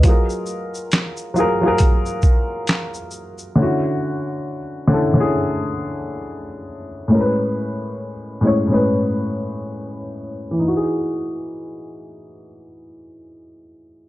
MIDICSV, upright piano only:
0, 0, Header, 1, 2, 480
1, 0, Start_track
1, 0, Tempo, 882353
1, 19, Time_signature, 4, 2, 24, 8
1, 7664, End_track
2, 0, Start_track
2, 0, Title_t, "Upright piano"
2, 0, Program_c, 0, 0
2, 0, Control_c, 0, 64, 127
2, 0, Note_on_c, 0, 71, 47
2, 0, Note_on_c, 0, 75, 51
2, 16, Note_on_c, 0, 54, 68
2, 25, Note_on_c, 0, 65, 69
2, 26, Control_c, 0, 64, 0
2, 40, Note_on_c, 0, 68, 70
2, 50, Note_on_c, 0, 70, 81
2, 115, Control_c, 0, 64, 127
2, 161, Note_off_c, 0, 75, 0
2, 162, Note_off_c, 0, 71, 0
2, 560, Note_off_c, 0, 54, 0
2, 565, Note_off_c, 0, 65, 0
2, 572, Note_off_c, 0, 68, 0
2, 577, Note_off_c, 0, 70, 0
2, 729, Note_on_c, 0, 54, 85
2, 739, Note_on_c, 0, 65, 80
2, 752, Note_on_c, 0, 68, 81
2, 762, Note_on_c, 0, 70, 100
2, 842, Note_off_c, 0, 54, 0
2, 847, Note_off_c, 0, 65, 0
2, 853, Note_off_c, 0, 68, 0
2, 858, Note_off_c, 0, 70, 0
2, 877, Note_on_c, 0, 54, 84
2, 888, Note_on_c, 0, 65, 82
2, 900, Note_on_c, 0, 68, 83
2, 911, Note_on_c, 0, 70, 101
2, 1587, Note_off_c, 0, 54, 0
2, 1592, Note_off_c, 0, 65, 0
2, 1598, Note_off_c, 0, 68, 0
2, 1604, Note_off_c, 0, 70, 0
2, 1934, Note_on_c, 0, 50, 77
2, 1945, Note_on_c, 0, 61, 72
2, 1946, Control_c, 0, 64, 0
2, 1957, Note_on_c, 0, 64, 65
2, 1969, Note_on_c, 0, 66, 91
2, 2042, Control_c, 0, 64, 127
2, 2479, Note_off_c, 0, 50, 0
2, 2484, Note_off_c, 0, 61, 0
2, 2490, Note_off_c, 0, 64, 0
2, 2496, Note_off_c, 0, 66, 0
2, 2652, Note_on_c, 0, 50, 92
2, 2662, Note_on_c, 0, 61, 78
2, 2675, Note_on_c, 0, 64, 76
2, 2685, Note_on_c, 0, 69, 83
2, 2763, Note_off_c, 0, 50, 0
2, 2768, Note_off_c, 0, 61, 0
2, 2775, Note_off_c, 0, 64, 0
2, 2780, Note_off_c, 0, 69, 0
2, 2795, Note_on_c, 0, 50, 81
2, 2804, Note_on_c, 0, 61, 76
2, 2818, Note_on_c, 0, 64, 74
2, 2830, Note_on_c, 0, 68, 94
2, 3506, Note_off_c, 0, 50, 0
2, 3510, Note_off_c, 0, 61, 0
2, 3517, Note_off_c, 0, 64, 0
2, 3523, Note_off_c, 0, 68, 0
2, 3850, Note_on_c, 0, 45, 80
2, 3864, Note_on_c, 0, 56, 69
2, 3866, Control_c, 0, 64, 0
2, 3874, Note_on_c, 0, 61, 68
2, 3886, Note_on_c, 0, 70, 69
2, 3916, Note_off_c, 0, 70, 0
2, 3920, Note_on_c, 0, 71, 86
2, 3955, Control_c, 0, 64, 127
2, 4397, Note_off_c, 0, 45, 0
2, 4404, Note_off_c, 0, 56, 0
2, 4409, Note_off_c, 0, 61, 0
2, 4432, Note_off_c, 0, 71, 0
2, 4574, Note_on_c, 0, 45, 86
2, 4586, Note_on_c, 0, 56, 75
2, 4597, Note_on_c, 0, 61, 74
2, 4607, Note_on_c, 0, 73, 87
2, 4684, Note_off_c, 0, 45, 0
2, 4690, Note_off_c, 0, 56, 0
2, 4696, Note_off_c, 0, 61, 0
2, 4701, Note_off_c, 0, 73, 0
2, 4718, Note_on_c, 0, 45, 79
2, 4730, Note_on_c, 0, 56, 73
2, 4740, Note_on_c, 0, 61, 77
2, 4753, Note_on_c, 0, 71, 88
2, 5427, Note_off_c, 0, 45, 0
2, 5433, Note_off_c, 0, 56, 0
2, 5438, Note_off_c, 0, 61, 0
2, 5445, Note_off_c, 0, 71, 0
2, 5718, Note_on_c, 0, 52, 71
2, 5763, Note_on_c, 0, 63, 59
2, 5786, Control_c, 0, 64, 0
2, 5809, Note_on_c, 0, 66, 66
2, 5856, Note_on_c, 0, 68, 67
2, 5875, Control_c, 0, 64, 127
2, 7664, Note_off_c, 0, 52, 0
2, 7664, Note_off_c, 0, 63, 0
2, 7664, Note_off_c, 0, 66, 0
2, 7664, Note_off_c, 0, 68, 0
2, 7664, End_track
0, 0, End_of_file